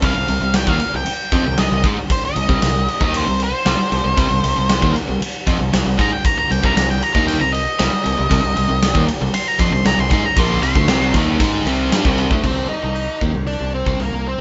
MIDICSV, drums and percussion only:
0, 0, Header, 1, 2, 480
1, 0, Start_track
1, 0, Key_signature, -3, "minor"
1, 0, Tempo, 517688
1, 23, Time_signature, 4, 2, 24, 8
1, 13360, End_track
2, 0, Start_track
2, 0, Title_t, "Drums"
2, 22, Note_on_c, 9, 36, 102
2, 22, Note_on_c, 9, 51, 91
2, 114, Note_off_c, 9, 36, 0
2, 114, Note_off_c, 9, 51, 0
2, 259, Note_on_c, 9, 51, 69
2, 352, Note_off_c, 9, 51, 0
2, 498, Note_on_c, 9, 51, 99
2, 499, Note_on_c, 9, 38, 112
2, 591, Note_off_c, 9, 51, 0
2, 592, Note_off_c, 9, 38, 0
2, 621, Note_on_c, 9, 36, 101
2, 714, Note_off_c, 9, 36, 0
2, 739, Note_on_c, 9, 51, 67
2, 832, Note_off_c, 9, 51, 0
2, 981, Note_on_c, 9, 51, 90
2, 1073, Note_off_c, 9, 51, 0
2, 1224, Note_on_c, 9, 51, 63
2, 1225, Note_on_c, 9, 36, 101
2, 1317, Note_off_c, 9, 36, 0
2, 1317, Note_off_c, 9, 51, 0
2, 1462, Note_on_c, 9, 51, 95
2, 1463, Note_on_c, 9, 38, 108
2, 1554, Note_off_c, 9, 51, 0
2, 1555, Note_off_c, 9, 38, 0
2, 1701, Note_on_c, 9, 51, 66
2, 1704, Note_on_c, 9, 36, 106
2, 1794, Note_off_c, 9, 51, 0
2, 1797, Note_off_c, 9, 36, 0
2, 1947, Note_on_c, 9, 36, 100
2, 1947, Note_on_c, 9, 51, 92
2, 2040, Note_off_c, 9, 36, 0
2, 2040, Note_off_c, 9, 51, 0
2, 2189, Note_on_c, 9, 51, 62
2, 2281, Note_off_c, 9, 51, 0
2, 2309, Note_on_c, 9, 36, 103
2, 2401, Note_off_c, 9, 36, 0
2, 2431, Note_on_c, 9, 51, 86
2, 2432, Note_on_c, 9, 38, 109
2, 2524, Note_off_c, 9, 51, 0
2, 2525, Note_off_c, 9, 38, 0
2, 2674, Note_on_c, 9, 51, 63
2, 2767, Note_off_c, 9, 51, 0
2, 2789, Note_on_c, 9, 36, 108
2, 2882, Note_off_c, 9, 36, 0
2, 2913, Note_on_c, 9, 51, 95
2, 3006, Note_off_c, 9, 51, 0
2, 3151, Note_on_c, 9, 51, 64
2, 3244, Note_off_c, 9, 51, 0
2, 3391, Note_on_c, 9, 51, 94
2, 3392, Note_on_c, 9, 38, 105
2, 3484, Note_off_c, 9, 51, 0
2, 3485, Note_off_c, 9, 38, 0
2, 3634, Note_on_c, 9, 51, 67
2, 3727, Note_off_c, 9, 51, 0
2, 3871, Note_on_c, 9, 36, 103
2, 3871, Note_on_c, 9, 51, 104
2, 3963, Note_off_c, 9, 36, 0
2, 3964, Note_off_c, 9, 51, 0
2, 4115, Note_on_c, 9, 51, 77
2, 4208, Note_off_c, 9, 51, 0
2, 4352, Note_on_c, 9, 51, 100
2, 4353, Note_on_c, 9, 38, 110
2, 4445, Note_off_c, 9, 51, 0
2, 4446, Note_off_c, 9, 38, 0
2, 4472, Note_on_c, 9, 36, 102
2, 4565, Note_off_c, 9, 36, 0
2, 4597, Note_on_c, 9, 51, 70
2, 4690, Note_off_c, 9, 51, 0
2, 4841, Note_on_c, 9, 51, 100
2, 4934, Note_off_c, 9, 51, 0
2, 5073, Note_on_c, 9, 36, 105
2, 5075, Note_on_c, 9, 51, 70
2, 5166, Note_off_c, 9, 36, 0
2, 5168, Note_off_c, 9, 51, 0
2, 5318, Note_on_c, 9, 51, 96
2, 5319, Note_on_c, 9, 38, 108
2, 5410, Note_off_c, 9, 51, 0
2, 5411, Note_off_c, 9, 38, 0
2, 5553, Note_on_c, 9, 36, 105
2, 5559, Note_on_c, 9, 51, 69
2, 5646, Note_off_c, 9, 36, 0
2, 5651, Note_off_c, 9, 51, 0
2, 5792, Note_on_c, 9, 36, 110
2, 5798, Note_on_c, 9, 51, 90
2, 5885, Note_off_c, 9, 36, 0
2, 5890, Note_off_c, 9, 51, 0
2, 6041, Note_on_c, 9, 51, 68
2, 6134, Note_off_c, 9, 51, 0
2, 6152, Note_on_c, 9, 36, 106
2, 6245, Note_off_c, 9, 36, 0
2, 6277, Note_on_c, 9, 51, 93
2, 6278, Note_on_c, 9, 38, 111
2, 6370, Note_off_c, 9, 51, 0
2, 6371, Note_off_c, 9, 38, 0
2, 6513, Note_on_c, 9, 51, 67
2, 6605, Note_off_c, 9, 51, 0
2, 6628, Note_on_c, 9, 36, 100
2, 6721, Note_off_c, 9, 36, 0
2, 6752, Note_on_c, 9, 51, 88
2, 6844, Note_off_c, 9, 51, 0
2, 6994, Note_on_c, 9, 51, 67
2, 7087, Note_off_c, 9, 51, 0
2, 7225, Note_on_c, 9, 51, 96
2, 7226, Note_on_c, 9, 38, 108
2, 7318, Note_off_c, 9, 51, 0
2, 7319, Note_off_c, 9, 38, 0
2, 7469, Note_on_c, 9, 51, 68
2, 7562, Note_off_c, 9, 51, 0
2, 7703, Note_on_c, 9, 36, 100
2, 7707, Note_on_c, 9, 51, 102
2, 7796, Note_off_c, 9, 36, 0
2, 7800, Note_off_c, 9, 51, 0
2, 7943, Note_on_c, 9, 51, 69
2, 8036, Note_off_c, 9, 51, 0
2, 8182, Note_on_c, 9, 51, 103
2, 8183, Note_on_c, 9, 38, 115
2, 8275, Note_off_c, 9, 51, 0
2, 8276, Note_off_c, 9, 38, 0
2, 8298, Note_on_c, 9, 36, 107
2, 8390, Note_off_c, 9, 36, 0
2, 8423, Note_on_c, 9, 51, 75
2, 8515, Note_off_c, 9, 51, 0
2, 8658, Note_on_c, 9, 51, 105
2, 8751, Note_off_c, 9, 51, 0
2, 8896, Note_on_c, 9, 36, 103
2, 8896, Note_on_c, 9, 51, 73
2, 8988, Note_off_c, 9, 36, 0
2, 8989, Note_off_c, 9, 51, 0
2, 9138, Note_on_c, 9, 51, 100
2, 9139, Note_on_c, 9, 38, 114
2, 9230, Note_off_c, 9, 51, 0
2, 9231, Note_off_c, 9, 38, 0
2, 9373, Note_on_c, 9, 36, 104
2, 9373, Note_on_c, 9, 51, 76
2, 9466, Note_off_c, 9, 36, 0
2, 9466, Note_off_c, 9, 51, 0
2, 9611, Note_on_c, 9, 36, 109
2, 9611, Note_on_c, 9, 51, 96
2, 9704, Note_off_c, 9, 36, 0
2, 9704, Note_off_c, 9, 51, 0
2, 9854, Note_on_c, 9, 51, 72
2, 9946, Note_off_c, 9, 51, 0
2, 9971, Note_on_c, 9, 36, 106
2, 10064, Note_off_c, 9, 36, 0
2, 10089, Note_on_c, 9, 51, 95
2, 10090, Note_on_c, 9, 38, 121
2, 10182, Note_off_c, 9, 51, 0
2, 10183, Note_off_c, 9, 38, 0
2, 10330, Note_on_c, 9, 51, 66
2, 10331, Note_on_c, 9, 36, 105
2, 10423, Note_off_c, 9, 36, 0
2, 10423, Note_off_c, 9, 51, 0
2, 10571, Note_on_c, 9, 36, 105
2, 10572, Note_on_c, 9, 51, 93
2, 10663, Note_off_c, 9, 36, 0
2, 10665, Note_off_c, 9, 51, 0
2, 10817, Note_on_c, 9, 51, 68
2, 10910, Note_off_c, 9, 51, 0
2, 11055, Note_on_c, 9, 51, 91
2, 11056, Note_on_c, 9, 38, 117
2, 11148, Note_off_c, 9, 51, 0
2, 11149, Note_off_c, 9, 38, 0
2, 11173, Note_on_c, 9, 36, 108
2, 11265, Note_off_c, 9, 36, 0
2, 11293, Note_on_c, 9, 51, 67
2, 11386, Note_off_c, 9, 51, 0
2, 11412, Note_on_c, 9, 36, 107
2, 11505, Note_off_c, 9, 36, 0
2, 11531, Note_on_c, 9, 36, 89
2, 11535, Note_on_c, 9, 49, 80
2, 11624, Note_off_c, 9, 36, 0
2, 11627, Note_off_c, 9, 49, 0
2, 12013, Note_on_c, 9, 46, 46
2, 12106, Note_off_c, 9, 46, 0
2, 12252, Note_on_c, 9, 36, 85
2, 12344, Note_off_c, 9, 36, 0
2, 12491, Note_on_c, 9, 46, 49
2, 12584, Note_off_c, 9, 46, 0
2, 12855, Note_on_c, 9, 36, 92
2, 12948, Note_off_c, 9, 36, 0
2, 12977, Note_on_c, 9, 46, 45
2, 13070, Note_off_c, 9, 46, 0
2, 13360, End_track
0, 0, End_of_file